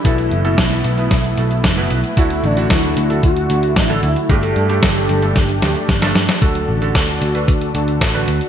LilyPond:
<<
  \new Staff \with { instrumentName = "Analog synth lead" } { \time 4/4 \key d \mixolydian \tempo 4 = 113 e'4. r2 r8 | e'8 d'8 e'4 fis'4 e'4 | a'2. r4 | r1 | }
  \new Staff \with { instrumentName = "Analog synth pad" } { \time 4/4 \key d \mixolydian << { b1 | <d fis'>1 | <d' g'>1 | <d fis' a'>1 | } \\ { <a e'>1~ | <a e'>1~ | <a e'>1 | d'1 | } >> }
  \new Staff \with { instrumentName = "Electric grand piano" } { \time 4/4 \key d \mixolydian <b, b e' a'>8. <b, b e' a'>4 <b, b e' b'>16 r8 <b, b e' a'>8. <b, b e' b'>8 r16 | <d d' e' fis'>8. <d d' e' fis'>4 <d d' e' a'>16 r8 <d d' e' fis'>8. <d d' e' a'>8 r16 | <g, a d' g'>8. <g, a d' g'>4 <g, a d' a'>16 r8 <g, a d' g'>8. <g, a d' a'>8 r16 | <d d' fis' a'>8. <d d' fis' a'>4 <d d' fis' b'>16 r8 <d d' fis' a'>8. <d d' fis' b'>8 r16 | }
  \new Staff \with { instrumentName = "Picked electric bass" } { \clef bass \time 4/4 \key d \mixolydian b,,8 fis,,8 b,,8 b,,8 b,,8 b,,8 fis,,8 b,,8 | d,8 a,,8 d,8 d,8 d,8 d,8 a,,8 d,8 | g,,8 g,8 g,,8 g,,8 r8 d,8 g,,8 g,8 | d,8 a,,8 d,8 d,8 d,8 d,8 a,,8 d,8 | }
  \new DrumStaff \with { instrumentName = "Drums" } \drummode { \time 4/4 <hh bd>16 hh16 hh16 hh16 <hh bd sn>16 hh16 hh16 hh16 <hh bd sn>16 hh16 hh16 hh16 <hh bd sn>16 hh16 hh16 hh16 | <hh bd>16 hh16 hh16 hh16 <hh bd sn>16 hh16 hh16 hh16 <hh bd>16 hh16 hh16 hh16 <hh bd sn>16 hh16 hh16 hh16 | <hh bd>16 hh16 hh16 hh16 <hh bd sn>16 hh16 hh16 hh16 <hh bd sn>16 hh16 <hh sn>16 hh16 <hh bd sn>16 <hh sn>16 <hh sn>16 <hh sn>16 | <hh bd>16 hh8 hh16 <hh bd sn>16 hh16 hh16 hh16 <hh bd>16 hh16 hh16 hh16 <hh bd sn>16 hh16 hh16 hh16 | }
>>